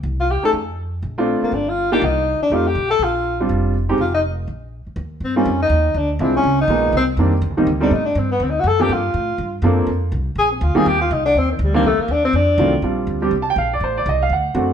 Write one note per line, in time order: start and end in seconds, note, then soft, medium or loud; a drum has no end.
0.03 0.40 C2 medium
0.20 0.32 F4 medium
0.31 0.44 G4 medium
0.43 0.53 A3 medium
0.43 0.53 C#4 soft
0.43 0.53 D#4 soft
0.43 0.53 G#4 medium
0.43 0.51 A4 medium
0.43 muted upright bass stroke soft
0.53 1.00 F2 medium
1.02 1.39 A#1 medium
1.18 1.51 A3 medium
1.18 1.51 C4 medium
1.18 1.51 D4 medium
1.18 1.51 F4 medium
1.42 1.56 A#3 medium
1.42 muted upright bass stroke soft
1.52 1.99 G1 medium
1.52 1.71 D4 medium
1.69 1.92 F4 medium
1.92 2.01 A#3 medium
1.92 2.01 D4 medium
1.92 2.01 D#4 medium
1.92 2.01 F4 medium
1.92 2.06 G4 medium
2.02 2.38 C2 medium
2.02 2.42 D#4 medium
2.40 2.55 D4 medium
2.40 muted upright bass stroke soft
2.50 2.74 F2 medium
2.50 2.64 A3 medium
2.50 2.64 C4 soft
2.50 2.64 D#4 medium
2.50 2.68 F4 medium
2.50 2.64 G4 medium
2.67 2.90 G4 medium
2.75 2.98 B1 medium
2.91 3.05 A4 medium
2.99 3.47 A#1 medium
3.04 3.41 F4 medium
3.40 3.73 G3 medium
3.40 3.73 C4 soft
3.40 3.73 D4 medium
3.40 3.73 F4 medium
3.49 3.96 F1 medium
3.89 3.98 G#3 medium
3.89 3.99 C4 medium
3.89 3.98 D#4 medium
3.89 3.99 G4 medium
3.98 4.45 F1 medium
3.98 4.13 F4 medium
4.15 4.20 D#4 medium
4.47 4.84 A#1 medium
4.86 muted upright bass stroke soft
4.96 5.20 D#2 medium
5.20 5.45 G2 medium
5.24 5.36 C4 medium
5.36 5.46 G3 medium
5.36 5.46 A#3 medium
5.36 5.46 C4 medium
5.36 5.59 C#4 medium
5.36 5.46 D#4 medium
5.36 5.46 F4 medium
5.45 5.69 F2 medium
5.62 5.99 D#4 medium
5.69 5.94 D#2 medium
5.94 6.19 D2 medium
5.94 6.11 D4 medium
6.19 6.43 C2 medium
6.19 6.45 F3 medium
6.19 6.45 G#3 medium
6.19 6.45 C4 medium
6.19 6.34 C4 medium
6.19 6.45 D4 medium
6.19 6.45 E4 medium
6.36 6.58 C#4 medium
6.43 6.67 C#2 medium
6.61 6.93 D#4 medium
6.68 6.92 A#1 medium
6.68 6.94 F3 medium
6.68 6.94 G#3 medium
6.68 6.94 A#3 medium
6.68 6.94 B3 medium
6.68 6.94 D#4 medium
6.92 7.16 C2 medium
6.97 7.04 C4 medium
7.17 7.41 F2 medium
7.17 7.31 D#3 medium
7.17 7.31 G3 medium
7.17 7.31 A#3 medium
7.17 7.31 C4 medium
7.17 7.31 D4 medium
7.42 7.50 D#2 medium
7.50 7.57 C2 medium
7.57 7.66 A#1 medium
7.57 7.66 D#3 medium
7.57 7.67 G3 medium
7.57 7.67 A#3 medium
7.57 7.67 C4 medium
7.57 7.67 D#4 medium
7.67 7.90 D2 medium
7.80 7.90 G3 medium
7.80 7.91 A3 medium
7.80 7.91 B3 medium
7.80 7.91 C4 medium
7.80 7.95 D4 medium
7.80 7.91 D#4 medium
7.91 8.15 A2 medium
7.91 8.05 D#4 medium
8.05 8.19 D4 medium
8.15 8.39 G2 medium
8.15 8.31 C4 medium
8.32 8.45 B3 medium
8.40 8.63 D2 medium
8.40 8.52 C4 medium
8.50 8.61 D#4 medium
8.60 8.88 F#2 medium
8.60 8.69 F#4 medium
8.67 8.83 A4 medium
8.79 8.89 F3 medium
8.79 8.89 A#3 medium
8.79 8.89 C4 medium
8.79 8.89 D4 medium
8.79 8.94 G4 medium
8.79 8.89 A4 medium
8.89 9.13 G2 medium
8.89 9.65 F4 medium
9.14 9.38 A2 medium
9.38 9.61 G2 medium
9.62 9.86 F#2 medium
9.62 9.88 F3 medium
9.62 9.88 A#3 medium
9.62 9.88 C4 medium
9.62 9.88 D4 medium
9.62 9.88 A4 medium
9.87 10.11 F2 medium
10.12 10.35 C2 medium
10.35 10.60 A#1 medium
10.35 10.51 G#4 medium
10.51 10.64 C4 soft
10.61 10.74 D2 medium
10.61 10.78 F4 medium
10.75 10.85 D#3 medium
10.75 10.85 G3 medium
10.75 10.85 A#3 medium
10.75 10.85 C4 medium
10.75 10.85 F4 medium
10.75 10.89 G#4 loud
10.75 muted upright bass stroke soft
10.86 11.10 D#2 medium
10.86 11.01 G4 medium
11.01 11.14 F4 medium
11.11 11.34 C2 medium
11.11 11.25 D#4 medium
11.26 11.39 D4 medium
11.35 11.58 D#2 medium
11.35 11.51 C4 medium
11.52 11.65 D#3 soft
11.59 11.82 D2 medium
11.63 11.75 G3 medium
11.74 11.84 D#3 medium
11.74 11.84 G3 medium
11.74 11.84 A#3 medium
11.74 11.88 A#3 medium
11.74 11.84 C4 medium
11.74 11.84 D4 medium
11.83 11.97 C2 medium
11.83 12.02 A3 medium
11.98 12.13 A#3 medium
11.98 muted upright bass stroke soft
12.08 12.32 D#2 medium
12.08 12.24 D4 medium
12.25 12.37 C4 medium
12.33 12.57 F2 medium
12.33 12.79 D4 medium
12.58 12.81 C2 loud
12.58 12.71 D#3 medium
12.58 12.72 F#3 medium
12.58 12.72 A3 medium
12.58 12.72 C4 medium
12.58 12.72 F4 medium
12.82 13.06 A#1 medium
12.82 13.19 G3 medium
12.82 13.19 C4 soft
12.82 13.19 D4 medium
12.82 13.19 F4 medium
13.07 13.30 D2 medium
13.22 13.31 G3 medium
13.22 13.31 C4 medium
13.22 13.32 D4 medium
13.22 13.32 G4 medium
13.31 13.55 C2 medium
13.42 13.49 A5 medium
13.50 13.57 G5 medium
13.56 13.80 A#1 medium
13.56 13.71 F5 medium
13.73 13.82 D5 medium
13.80 14.05 A1 medium
13.80 13.96 C5 medium
13.97 14.07 D5 medium
14.06 14.29 C2 medium
14.06 14.21 D#5 medium
14.22 14.32 F5 medium
14.29 14.54 D2 medium
14.29 14.73 F#5 medium
14.54 14.73 F#2 medium
14.54 14.73 A3 medium
14.54 14.73 C4 medium
14.54 14.73 D4 medium
14.54 14.73 F#4 medium